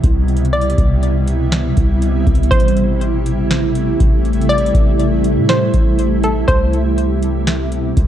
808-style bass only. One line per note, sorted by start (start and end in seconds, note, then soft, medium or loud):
0.04 0.75 C2 loud
0.78 1.73 C2 loud
1.77 2.25 C2 loud
2.27 2.51 C2 loud
2.52 3.96 A1 loud
4.00 4.72 A1 loud
4.75 5.38 A1 loud
5.37 5.72 A2 medium
5.74 6.45 A1 loud
6.48 7.93 C2 loud
7.97 8.07 C2 loud